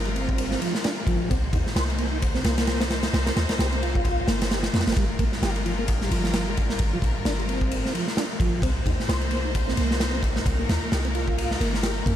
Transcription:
Already playing: G1 G3 F4 A#4
0.05 G3, ride
0.15 C4, ride
0.29 kick
0.38 ride
0.51 snare
0.61 F3, ride
0.75 snare
0.84 D4, snare, ride
1.07 G1 F3, kick, ride
1.30 C2 A#3 C4 D#4 C5, kick, ride
1.53 D#2 D#4, kick, ride
1.67 snare
1.76 C2 C5, snare, ride
1.90 ride
1.98 A#3, ride
2.12 D#4
2.22 kick, ride
2.35 C4, snare
2.44 C2 A#3, snare, ride
2.58 snare, ride
2.67 snare, ride
2.80 C4, snare, ride
2.90 snare, ride
3.03 snare, ride
3.13 C2, snare, ride
3.26 A#3, snare, ride
3.36 D#2, snare, ride
3.49 snare, ride
3.59 C2 G4, snare, ride
3.72 C4, ride
3.82 F4, ride
3.95 kick
4.05 kick, ride
4.28 G1 A#3, snare, ride
4.41 snare, ride
4.51 G4, snare, ride
4.63 snare, ride
4.73 F2 A#3, snare, ride
4.80 snare, ride
4.87 G1, snare, ride
4.92 snare, ride
4.97 G1 G3 F4 A#4, kick, ride
5.19 A#1 A#3, kick, ride
5.33 snare
5.42 G1 G4, snare, ride
5.56 ride
5.66 F3, ride
5.79 A#3
5.88 kick, ride
6.01 G3, snare
6.11 G1 F3, ride
6.24 snare
6.33 snare, ride
6.47 G3
6.57 kick, ride
6.70 snare
6.79 G1, kick, ride
6.93 F3
7.02 A#1, kick, ride
7.16 G1
7.25 G1 D4, snare, ride
7.39 G3, ride
7.49 C4, ride
7.61 kick
7.71 ride
7.85 snare
7.94 F3, ride
8.08 snare
8.17 D4, snare, ride
8.40 G1 F3, kick, ride
8.62 C2 A#3 C4 D#4 C5, kick, ride
8.86 D#2 D#4, kick, ride
9.00 snare
9.09 C2 C5, snare, ride
9.21 ride
9.31 A#3, ride
9.45 D#4
9.55 kick, ride
9.67 C4, snare
9.77 C2 A#3, ride
9.91 snare
10.00 snare, ride
10.13 C4
10.23 kick, ride
10.36 snare
10.46 C2 A#4, kick, ride
10.59 A#3
10.69 D#2, snare, ride
10.82 C2
10.92 C2 G4, snare, ride
11.05 C4, ride
11.15 F4, ride
11.28 kick
11.38 ride
11.51 snare
11.60 G1 A#3, ride
11.74 snare
11.83 G4, snare, ride
12.06 F2 A#3, kick, ride

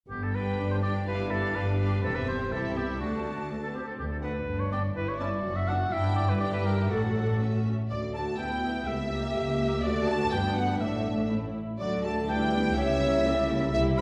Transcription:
0.09 G1 G2 B3 G4
0.23 A4
0.34 D4 G4 B4 G5
0.59 G1 G2 D4
0.71 C5
0.82 D4 G4 D5 G5
1.07 G1 G2 D4 E4 G4 B4 F5
1.31 D4 G4 A4 F5
1.55 G1 G2 D4 B4
1.80 D4 G4 F5
2.03 E1 E2 C4 G4 A4 E5
2.15 B4
2.28 C5
2.52 C2 C4 E4 G4 A4 E5
2.77 B3 G4
3.00 D2 A3 D4 F#4 A5
3.51 A3
3.63 B3 A4
3.75 C4 G4
3.87 A4
3.99 D2 G4
4.12 A4
4.23 A3 D4 B4 F#5
4.48 G1 G2 D4
4.60 C#5
4.72 B3 D4 D5 G5
4.95 G1 G2 E4 B4
5.08 C#5
5.19 C#4 E4 D5 A5
5.44 F#1 F#2 F#4
5.56 E5
5.68 D4 F#5 A5
5.91 G1 G2 D4 E4 E5 G5
6.16 D5
6.29 B4
6.40 D4 E4 G4 D5 G5
6.53 B4
6.66 A#4
6.91 A1 A2 D4 F#4 A4 F#5
7.40 C#4 A4 E5
7.90 D2 A3 F#4 D5
8.14 A3 F#4 A5
8.38 D2 B3 E4 G4 G5
8.63 B3 E4
8.86 C#2 A#3 G4 A4 E5
9.12 A#3 G4
9.35 C#2 G4
9.60 A#3 G4
9.83 D2 A3 F#4 D5
10.07 A5
10.31 G1 G2 B3 D4 B4 G5
10.55 F#5
10.80 A1 A2 A3 D4 A4 E5
11.30 A3 C#4 E4
11.79 D2 D3 F#3 A3 F#4 D5
12.04 A3 A4 A5
12.28 G3 D4 E4 B4 G5
12.52 B3 D4
12.77 C#2 C#3 G3 G4 C#5 E5
13.01 A#3 E4
13.25 G3 G4 A4
13.49 A#3 E4
13.73 C2 C3 G3 E4 G4 E5
13.98 B5

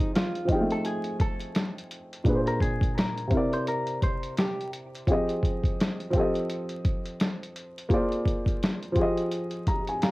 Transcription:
Already playing: F3 C4 D#4 G4 G#4 C5
0.00 closed hi-hat
0.15 F4, snare, closed hi-hat
0.35 closed hi-hat
0.45 F3 C4, kick, closed hi-hat
0.50 D#4 G5
0.55 G#4
0.61 A3
0.70 A4, closed hi-hat
0.85 G#4, closed hi-hat
1.04 closed hi-hat
1.20 A4, kick, closed hi-hat
1.40 closed hi-hat
1.55 snare, closed hi-hat
1.78 closed hi-hat
1.91 closed hi-hat
2.13 closed hi-hat
2.24 A#2 A#3 D4 G#4, kick, closed hi-hat
2.29 B4
2.35 C5
2.47 A#4, closed hi-hat
2.60 G#4, kick, closed hi-hat
2.81 kick, closed hi-hat
2.98 A#4, snare, closed hi-hat
3.18 closed hi-hat
3.27 C3 C4, kick, closed hi-hat
3.32 E4 A#4
3.37 D5
3.53 C5, closed hi-hat
3.67 A#4, closed hi-hat
3.87 closed hi-hat
4.02 C5, kick, closed hi-hat
4.23 closed hi-hat
4.37 G4, snare, closed hi-hat
4.61 closed hi-hat
4.73 closed hi-hat
4.95 closed hi-hat
5.07 F3 C4 G4 G#4, kick, closed hi-hat
5.12 D#5
5.29 closed hi-hat
5.43 kick, closed hi-hat
5.64 kick, closed hi-hat
5.80 snare, closed hi-hat
6.00 closed hi-hat
6.10 F3 C4, kick, closed hi-hat
6.15 G4 A4
6.20 D#5
6.35 closed hi-hat
6.50 closed hi-hat
6.69 closed hi-hat
6.85 kick, closed hi-hat
7.06 closed hi-hat
7.20 snare, closed hi-hat
7.43 closed hi-hat
7.56 closed hi-hat
7.78 closed hi-hat
7.89 A#3 F4 G#4 C5, kick, closed hi-hat
7.94 D5
8.12 closed hi-hat
8.25 kick, closed hi-hat
8.46 kick, closed hi-hat
8.63 snare, closed hi-hat
8.83 closed hi-hat
8.92 F3 F4, kick, closed hi-hat
8.97 G4 G#4
9.02 D#5
9.17 closed hi-hat
9.31 closed hi-hat
9.51 closed hi-hat
9.67 A#5, kick, closed hi-hat
9.87 G#5, closed hi-hat
10.02 F5 A#5, snare, closed hi-hat

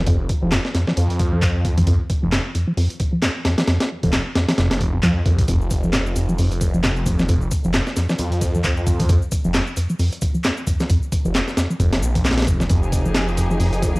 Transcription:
Already playing: F1
0.06 F2, kick, closed hi-hat
0.29 kick, closed hi-hat
0.42 F1 F3
0.52 D#2, snare, clap, closed hi-hat
0.65 snare
0.74 F2, snare, closed hi-hat
0.87 F3, snare
0.97 F2, closed hi-hat
1.10 closed hi-hat
1.19 kick, closed hi-hat
1.33 F3
1.42 D#2, kick, clap, closed hi-hat
1.65 F2, kick, closed hi-hat
1.78 F3, kick, closed hi-hat
1.87 F2, kick, closed hi-hat
2.10 kick, closed hi-hat
2.23 F1 F3
2.32 D#2, snare, clap, closed hi-hat
2.55 F2, closed hi-hat
2.67 F3
2.77 F2, open hi-hat
2.90 closed hi-hat
3.00 kick, closed hi-hat
3.13 F3
3.22 D#2, snare, clap, closed hi-hat
3.45 F2, snare, closed hi-hat
3.58 F3, snare, closed hi-hat
3.67 F2, snare, closed hi-hat
3.80 snare, closed hi-hat
4.03 F1 F3, kick, closed hi-hat
4.13 D#2, snare, clap, closed hi-hat
4.35 F2, snare, closed hi-hat
4.48 F3, snare, closed hi-hat
4.58 F1 F2, snare, closed hi-hat
4.71 snare, closed hi-hat
4.81 kick, closed hi-hat
4.94 F2
5.03 F2 F3, kick, clap, closed hi-hat
5.26 C2 F2, kick, closed hi-hat
5.39 C3, kick, closed hi-hat
5.48 F1 F2, kick, closed hi-hat, shaker
5.61 shaker
5.70 kick, closed hi-hat, shaker
5.83 F3, shaker
5.93 D#2, snare, clap, closed hi-hat, shaker
6.06 shaker
6.16 F2, closed hi-hat, shaker
6.29 F3, shaker
6.38 F2, open hi-hat, shaker
6.52 closed hi-hat, shaker
6.61 kick, closed hi-hat, shaker
6.74 F3, shaker
6.84 D#2, snare, clap, closed hi-hat, shaker
6.97 shaker
7.06 F2, kick, closed hi-hat, shaker
7.19 F3, snare, shaker
7.29 F2, kick, closed hi-hat, shaker
7.41 shaker
7.51 kick, closed hi-hat, shaker
7.64 F1 F3, shaker
7.74 D#2, snare, clap, closed hi-hat, shaker
7.87 snare, shaker
7.96 F2, snare, closed hi-hat, shaker
8.09 F3, snare, shaker
8.19 F2, closed hi-hat, shaker
8.32 closed hi-hat, shaker
8.41 kick, closed hi-hat, shaker
8.55 F3, shaker
8.64 D#2, kick, clap, closed hi-hat, shaker
8.77 shaker
8.87 F2, kick, closed hi-hat, shaker
9.00 F3, kick, closed hi-hat, shaker
9.09 F2, kick, closed hi-hat, shaker
9.22 shaker
9.31 kick, closed hi-hat, shaker
9.45 F1 F3, shaker
9.54 D#2, snare, clap, closed hi-hat, shaker
9.67 shaker
9.77 F2, closed hi-hat, shaker
9.89 F3, shaker
9.99 F2, open hi-hat, shaker
10.12 closed hi-hat, shaker
10.21 kick, closed hi-hat, shaker
10.35 F3, shaker
10.44 D#2, snare, clap, closed hi-hat, shaker
10.57 shaker
10.67 F2, kick, closed hi-hat, shaker
10.80 F3, snare, shaker
10.90 F2, kick, closed hi-hat, shaker
11.03 shaker
11.12 kick, closed hi-hat, shaker
11.25 F1 F3, shaker
11.35 D#2, snare, clap, closed hi-hat, shaker
11.48 snare, shaker
11.57 F2, snare, closed hi-hat, shaker
11.70 F3, shaker
11.80 F1 F2, kick, closed hi-hat, shaker
11.93 snare, closed hi-hat, shaker
12.02 A#1, shaker
12.15 F3, kick, closed hi-hat, shaker
12.25 D#2, snare, clap, closed hi-hat, shaker
12.31 snare, closed hi-hat
12.38 snare, closed hi-hat, shaker
12.42 snare, closed hi-hat
12.47 F1 F2, kick, closed hi-hat, shaker
12.60 F3, snare, shaker
12.70 F1 F2 F3 D#4 G4 G#4, kick, closed hi-hat, shaker
12.83 shaker
12.92 kick, closed hi-hat, shaker
13.05 F3, shaker
13.15 D#2, snare, clap, closed hi-hat, shaker
13.28 shaker
13.37 F2, closed hi-hat, shaker
13.51 F3, shaker
13.60 F2, open hi-hat, shaker
13.73 closed hi-hat, shaker
13.82 kick, closed hi-hat, shaker
13.95 F3, shaker

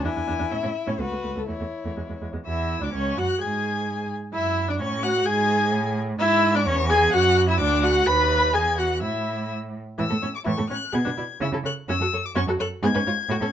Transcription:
0.05 E2 D4 E4 G#5
0.16 E2 D4
0.27 E2 D4
0.39 E2 D4
0.50 A2 C#4 E5
0.62 A2 C#4
0.87 A2 C#4 C#5
0.99 C#2 A3 F#4 B4
1.11 C#2 A3
1.23 C#2 A3
1.35 C#2 A3 A4
1.47 E2 A3 E4 C#5
1.60 E2 A3
1.85 E2 A3
1.96 E2 G#3
2.09 E2 G#3
2.21 E2 G#3
2.33 E2 G#3
2.45 E2 E4 E5 E6
2.81 D2 D4 D5 D6
2.93 C#2 C#4 C#5 C#6
3.16 F#2 F#4 F#5 F#6
3.40 G#2 G#4 G#5 G#6
4.33 F#2 E4 E5 E6
4.68 D4 D5 D6
4.79 A2 C#4 C#5 C#6
5.03 F#4 F#5 F#6
5.25 G#2 G#4 G#5 G#6
5.72 A2
6.18 G#2 E4 E5 E6
6.54 D4 D5 D6
6.66 E2 C#4 C#5 C#6
6.89 G#4 G#5 G#6
7.12 F#2 F#4 F#5 F#6
7.48 E4 E5 E6
7.59 D2 D4 D5 D6
7.83 F#4 F#5 F#6
8.06 D#2 B4 B5 B6
8.54 E2 G#4 G#5 G#6
8.78 F#4 F#5 F#6
9.02 A2 E4 E5 E6
9.98 A2 E3 E4 E6
10.10 A2 A3 A4
10.22 A2 C#4 C#5
10.35 D6
10.44 A2 E3 E4 C#6
10.57 A2 A3 A4
10.70 A2 C#4 C#5 F#6
10.92 B2 B3 G#4 G#6
11.05 B2 D4 B4
11.17 B2 E4 D5
11.40 C#3 C#4 E4 E6
11.52 C#3 E4 A4
11.64 C#3 A4 C#5 F#6
11.88 F#2 C#4 F#4 E6
11.99 F#2 F#4 A4
12.12 F#2 A4 C#5
12.25 D6
12.35 F#2 C#4 F#4 C#6
12.47 F#2 F#4 A4
12.59 F#2 A4 C#5 F#6
12.82 G#2 B3 G#4 G#6
12.94 G#2 C#4 B4
13.06 G#2 F4 C#5
13.29 A2 A3 F#4
13.41 A2 C#4 A4

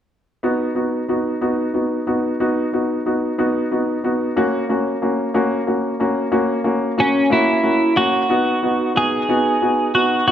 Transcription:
0.43 B3 D#4 F#4
0.75 B3 D#4 F#4
1.08 B3 D#4 F#4
1.41 B3 D#4 F#4
1.74 B3 D#4 F#4
2.07 B3 D#4 F#4
2.40 B3 D#4 F#4
2.73 B3 D#4 F#4
3.06 B3 D#4 F#4
3.38 B3 D#4 F#4
3.71 B3 D#4 F#4
4.04 B3 D#4 F#4
4.36 A#3 C#4 F#4
4.69 A#3 C#4 F#4
5.02 A#3 C#4 F#4
5.34 A#3 C#4 F#4
5.67 A#3 C#4 F#4
6.00 A#3 C#4 F#4
6.32 A#3 C#4 F#4
6.64 A#3 C#4 F#4
6.98 A#3 C#4 F#4
7.30 A#3 C#4 E4 F#4
7.63 A#3 C#4 F#4
7.96 A#3 C#4 F#4
8.30 B3 D#4 F#4
8.63 B3 D#4 F#4
8.95 B3 D#4 F#4 G#4
9.29 B3 D#4 F#4
9.62 B3 D#4 F#4
9.95 B3 D#4 F#4
10.27 B3 D#4 F#4

